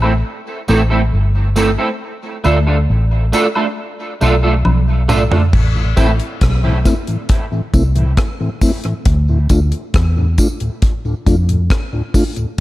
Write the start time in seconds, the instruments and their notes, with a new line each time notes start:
Already playing: fingered electric bass A1
0.02 clean electric guitar A3 C4 E4 A4, high woodblock
0.68 fingered electric bass A1, clean electric guitar A3 C4 E4 A4, tambourine
0.90 clean electric guitar A3 C4 E4 A4
1.13 fingered electric bass G1
1.56 clean electric guitar A3 C4 E4 A4, tambourine
1.78 clean electric guitar A3 C4 E4 A4
2.44 fingered electric bass D2, clean electric guitar A3 D4 F4 A4, tambourine, high woodblock
2.67 clean electric guitar A3 D4 F4 A4
2.90 fingered electric bass A1
3.32 clean electric guitar A3 D4 F4 A4, tambourine
3.55 clean electric guitar A3 D4 F4 A4, high woodblock
4.21 fingered electric bass B1, clean electric guitar A3 D4 F4 A4, tambourine
4.43 clean electric guitar A3 D4 F4 A4
4.65 fingered electric bass B1, high tom, high woodblock
5.08 clean electric guitar A3 D4 F4 A4, mid tom, tambourine
5.31 clean electric guitar A3 D4 F4 A4, floor tom
5.53 fingered electric bass A1, kick, crash
5.76 tonewheel organ A2 E3
5.97 fingered electric bass A1, clean electric guitar A3 C4 E4 A4, tonewheel organ A3 C4 E4, kick, closed hi-hat, tambourine
6.20 closed hi-hat
6.41 fingered electric bass B1, kick, cross-stick, closed hi-hat
6.64 tonewheel organ A2 E3
6.85 tonewheel organ A3 C4 E4, kick, cross-stick, closed hi-hat, tambourine
7.07 tonewheel organ A2 E3, closed hi-hat
7.29 kick, closed hi-hat
7.52 tonewheel organ A2 E3
7.73 fingered electric bass C2, tonewheel organ A3 C4 E4, kick, closed hi-hat, tambourine
7.96 tonewheel organ A2 E3, closed hi-hat
8.17 kick, cross-stick, closed hi-hat
8.40 tonewheel organ A2 E3
8.61 tonewheel organ A3 C4 E4, kick, open hi-hat, tambourine
8.84 tonewheel organ A2 E3, closed hi-hat
9.05 fingered electric bass D2, kick, closed hi-hat
9.29 tonewheel organ D2 A2
9.49 fingered electric bass D2, tonewheel organ A3 D4 F4, kick, closed hi-hat, tambourine
9.72 closed hi-hat
9.94 fingered electric bass E2, kick, cross-stick, closed hi-hat
10.17 tonewheel organ D2 A2
10.38 tonewheel organ A3 D4 F4, kick, closed hi-hat, tambourine
10.60 tonewheel organ D2 A2, closed hi-hat
10.82 kick, closed hi-hat
11.05 tonewheel organ D2 A2
11.26 fingered electric bass F2, tonewheel organ A3 D4 F4, kick, closed hi-hat, tambourine
11.49 tonewheel organ D2 A2, closed hi-hat
11.70 kick, cross-stick, closed hi-hat
11.93 tonewheel organ D2 A2
12.14 tonewheel organ A3 D4 F4, kick, open hi-hat, tambourine
12.36 tonewheel organ D2 A2, closed hi-hat